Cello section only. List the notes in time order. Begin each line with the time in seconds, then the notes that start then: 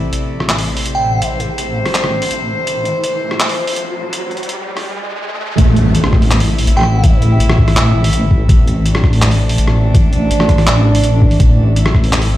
Already playing: C3 A3 E4 D5
0.61 C5
5.59 C3
5.72 A3
6.01 E4
8.91 D4
11.82 E4